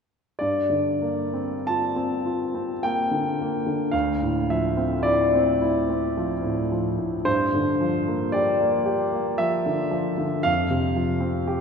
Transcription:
0.39 G2 D5
0.70 D3
1.02 A#3
1.34 C4
1.67 F4 A5
1.96 C4
2.26 F4
2.55 C4
2.83 A#3 G5
3.11 D3
3.42 A#3
3.67 D3
3.91 D2 F5
4.22 A2
4.50 F3 E5
4.77 C4
5.03 E4 D5
5.35 C4
5.61 E4
5.90 C4
6.17 F3
6.43 A2
6.72 F3
6.99 A2
7.25 G2 C5
7.54 D3
7.81 F3
8.08 A#3
8.32 G4 D5
8.60 A#3
8.86 G4
9.13 A#3
9.38 F3 E5
9.66 D3
9.91 F3
10.18 D3
10.43 F2 F5
10.70 C3
10.96 F3
11.20 C4
11.47 G4

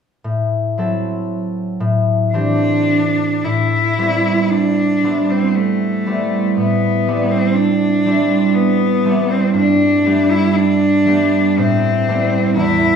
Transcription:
0.24 A2
0.78 F#3 C4 E4 A4
1.80 A2
2.33 E3 C4 D4 G4
3.44 A2 E4
3.98 G3 B3 C4 E4
4.51 D4
5.03 G3 B3 C4 E4
5.30 C4
5.56 A3
6.06 G3 B3 C4 E4
6.57 A2 B3
7.07 G3 C4 D4 E4
7.31 C4
7.55 D4
8.05 G3 C4 D4 E4
8.55 B3
9.04 G3 C4 D4 E4
9.30 C4
9.54 G2 D4
10.05 G3 A3 B3 G4
10.31 E4
10.56 D4
11.05 G3 A3 B3 G4
11.58 A2 C4
12.08 G3 A3 B3 E4
12.56 E2 E4

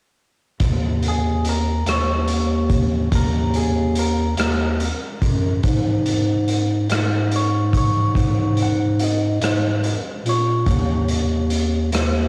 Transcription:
0.60 D#2, kick, closed hi-hat
1.03 closed hi-hat
1.08 G#4
1.45 closed hi-hat
1.49 A#4
1.86 D#2 C#5, cross-stick, closed hi-hat
2.28 closed hi-hat
2.70 kick, closed hi-hat
3.12 D#2 A#4, kick, closed hi-hat
3.54 G#4, closed hi-hat
3.95 A#4, closed hi-hat
4.37 D#2, cross-stick, closed hi-hat
4.80 closed hi-hat
5.21 F#2, kick, closed hi-hat
5.63 G#2, kick, closed hi-hat
6.06 closed hi-hat
6.48 closed hi-hat
6.90 G#2, cross-stick, closed hi-hat
7.32 closed hi-hat
7.36 C#5
7.73 kick, closed hi-hat
7.77 C#5
8.15 G#2, kick, closed hi-hat
8.57 closed hi-hat
8.63 F#5
8.99 D#5, closed hi-hat
9.41 G#2, cross-stick, closed hi-hat
9.84 closed hi-hat
10.24 A#2, closed hi-hat
10.29 C#5
10.66 D#2, kick, closed hi-hat
11.08 closed hi-hat
11.50 closed hi-hat
11.92 D#2, cross-stick, closed hi-hat

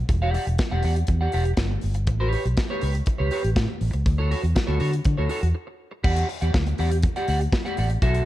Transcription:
0.09 E1, muted clean electric guitar stroke, kick, closed hi-hat
0.22 G4 D5 F#5
0.34 G4 D5 F#5, open hi-hat
0.47 E1, muted clean electric guitar stroke, closed hi-hat
0.58 muted clean electric guitar stroke, kick, snare, closed hi-hat
0.71 E1 G4 D5 F#5
0.83 E2 G4 D5 F#5, open hi-hat
0.96 muted clean electric guitar stroke, closed hi-hat
1.07 E2, muted clean electric guitar stroke, kick, closed hi-hat
1.21 G4 D5 F#5
1.32 E1 G4 D5 F#5, open hi-hat
1.45 muted clean electric guitar stroke, closed hi-hat
1.57 G1, muted clean electric guitar stroke, kick, snare, closed hi-hat
1.71 muted clean electric guitar stroke
1.81 G1, open hi-hat
1.94 muted clean electric guitar stroke, closed hi-hat
2.07 A1, muted clean electric guitar stroke, kick, closed hi-hat
2.20 G4 B4 C#5
2.33 G4 B4 C#5, open hi-hat
2.45 B1, muted clean electric guitar stroke, closed hi-hat
2.57 muted clean electric guitar stroke, kick, snare, closed hi-hat
2.70 G4 B4 C#5
2.81 C#2 G4 B4 C#5, open hi-hat
2.95 muted clean electric guitar stroke, closed hi-hat
3.06 muted clean electric guitar stroke, kick, closed hi-hat
3.18 C#2 G4 B4 C#5
3.31 G4 B4 C#5, open hi-hat
3.44 A1, muted clean electric guitar stroke, closed hi-hat
3.56 A2, muted clean electric guitar stroke, kick, snare, closed hi-hat
3.69 muted clean electric guitar stroke
3.81 A1, open hi-hat
3.93 C#2, muted clean electric guitar stroke, closed hi-hat
4.06 D2, muted clean electric guitar stroke, kick, closed hi-hat
4.18 F#4 A4 C#5
4.31 F#4 A4 C#5, open hi-hat
4.43 E2, muted clean electric guitar stroke, closed hi-hat
4.55 muted clean electric guitar stroke, kick, snare, closed hi-hat
4.67 D2 F#4 A4 C#5
4.80 D3 F#4 A4 C#5, open hi-hat
4.92 muted clean electric guitar stroke, closed hi-hat
5.05 D3, muted clean electric guitar stroke, kick, closed hi-hat
5.18 D2 F#4 A4 C#5
5.29 F#4 A4 C#5, open hi-hat
5.42 E2, muted clean electric guitar stroke, closed hi-hat
5.54 muted clean electric guitar stroke
5.67 muted clean electric guitar stroke
5.91 muted clean electric guitar stroke
6.04 E2 G4 D5 F#5, kick, crash
6.16 closed hi-hat
6.29 muted clean electric guitar stroke, open hi-hat
6.41 E2 G4 D5 F#5, closed hi-hat
6.54 D2, muted clean electric guitar stroke, kick, snare
6.67 muted clean electric guitar stroke, closed hi-hat
6.78 E2 G4 D5 F#5, open hi-hat
6.91 muted clean electric guitar stroke, closed hi-hat
7.02 muted clean electric guitar stroke, kick, closed hi-hat
7.16 G4 D5 F#5, closed hi-hat
7.28 D2 G4 D5 F#5, open hi-hat
7.41 muted clean electric guitar stroke, closed hi-hat
7.52 muted clean electric guitar stroke, kick, snare
7.65 G4 D5 F#5, closed hi-hat
7.77 A1 G4 D5 F#5, open hi-hat
7.90 muted clean electric guitar stroke, closed hi-hat
8.02 B1 F#4 A4 E5, kick, closed hi-hat
8.14 closed hi-hat

